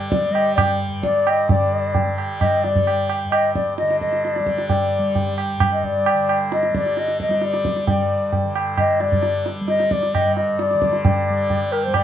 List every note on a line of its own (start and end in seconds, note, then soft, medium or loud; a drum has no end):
0.00 0.88 G2 medium
0.00 1.49 D3 medium
0.00 0.30 G3 medium
0.10 0.34 D5 loud
0.10 tabla ke medium
0.30 2.07 G3 medium
0.30 0.54 D#5 loud
0.35 tabla na medium
0.55 0.78 D5 medium
0.55 tabla na medium
0.55 tabla ge medium
0.88 3.24 G2 medium
1.03 1.30 D5 loud
1.03 tabla ke medium
1.27 1.50 D#5 loud
1.27 tabla na medium
1.49 3.81 D3 medium
1.49 2.15 D5 medium
1.49 tabla tin medium
1.49 tabla ge medium
1.95 tabla tin medium
1.95 tabla ge medium
2.07 2.65 G3 medium
2.18 tabla na medium
2.40 2.65 D#5 medium
2.40 tabla na medium
2.40 tabla ge medium
2.63 4.40 G3 soft
2.63 3.09 D5 medium
2.63 tabla te medium
2.76 tabla ge medium
2.87 tabla na medium
3.09 tabla na medium
3.24 5.56 G2 medium
3.31 3.53 D#5 loud
3.31 tabla na medium
3.55 3.76 D5 medium
3.55 tabla ke medium
3.78 6.14 D3 medium
3.78 3.99 D#5 medium
3.78 tabla te medium
3.90 tabla te medium
4.01 4.26 D#5 medium
4.01 tabla ke soft
4.13 tabla te medium
4.24 4.68 D5 medium
4.24 tabla te medium
4.36 4.99 G3 soft
4.36 tabla te medium
4.47 tabla ke medium
4.58 tabla te medium
4.69 5.34 D5 medium
4.69 tabla tin medium
4.69 tabla ge medium
4.99 6.70 G3 medium
5.15 tabla tin medium
5.15 tabla ge medium
5.38 tabla na medium
5.57 7.86 G2 medium
5.57 tabla na medium
5.57 tabla ge medium
5.72 5.86 D#5 medium
5.84 6.41 D5 medium
5.84 tabla ge soft
6.06 tabla na medium
6.14 8.44 D3 medium
6.29 tabla na medium
6.52 6.77 D#5 loud
6.52 tabla te medium
6.63 tabla te medium
6.70 7.29 G3 medium
6.75 7.00 D5 medium
6.75 tabla ke medium
6.86 tabla te medium
6.97 7.20 D#5 medium
6.97 tabla te medium
7.08 tabla te medium
7.20 7.46 D#5 medium
7.20 tabla ke medium
7.29 9.01 G3 medium
7.29 tabla te medium
7.41 7.88 D5 medium
7.41 tabla te medium
7.54 tabla te medium
7.65 tabla ke medium
7.76 tabla te medium
7.87 10.17 G2 medium
7.87 8.52 D5 medium
7.87 tabla tin medium
7.87 tabla ge loud
8.32 tabla tin medium
8.32 tabla ge medium
8.44 10.74 D3 medium
8.55 tabla na medium
8.77 9.02 D#5 loud
8.77 tabla na medium
8.77 tabla ge medium
9.00 9.61 G3 medium
9.00 9.46 D5 medium
9.00 tabla te medium
9.12 tabla ge medium
9.23 tabla te medium
9.46 tabla te medium
9.61 11.30 G3 medium
9.68 9.94 D#5 loud
9.68 tabla te medium
9.80 tabla te medium
9.91 10.16 D5 loud
9.91 tabla ke medium
10.03 tabla te soft
10.14 12.04 G2 medium
10.14 10.35 D#5 medium
10.14 tabla na medium
10.14 tabla ge medium
10.36 10.61 D#5 medium
10.36 tabla te medium
10.59 11.04 D5 medium
10.59 tabla te medium
10.71 12.04 D3 medium
10.71 tabla te medium
10.82 tabla ke medium
10.93 tabla te medium
11.05 11.74 D5 medium
11.05 tabla tin loud
11.05 tabla ge medium
11.30 11.87 G3 medium
11.50 tabla tin medium
11.50 tabla ge medium
11.72 11.85 A#4 medium
11.72 tabla na medium
11.84 12.04 G3 medium
11.84 11.96 C5 medium
11.94 12.04 D5 medium
11.94 tabla na medium
11.94 tabla ge medium